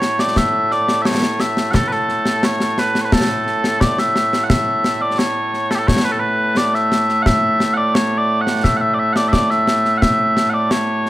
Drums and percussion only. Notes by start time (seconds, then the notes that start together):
0.02 snare
0.19 snare
0.36 concert bass drum, snare
0.71 snare
0.88 snare
1.05 snare
1.22 snare
1.40 snare
1.57 snare
1.74 concert bass drum, snare
1.91 snare
2.09 snare
2.25 snare
2.43 snare
2.60 snare
2.78 snare
2.95 snare
3.12 concert bass drum, snare
3.30 snare
3.47 snare
3.64 snare
3.81 concert bass drum, snare
3.98 snare
4.16 snare
4.33 snare
4.50 concert bass drum, snare
4.84 snare
5.19 snare
5.54 snare
5.71 snare
5.88 concert bass drum, snare
6.57 snare
6.75 snare
6.92 snare
7.09 snare
7.26 concert bass drum, snare
7.60 snare
7.95 snare
8.47 snare
8.64 concert bass drum, snare
9.16 snare
9.33 concert bass drum, snare
9.50 snare
9.67 snare
9.85 snare
10.02 concert bass drum, snare
10.37 snare
10.71 snare
11.06 snare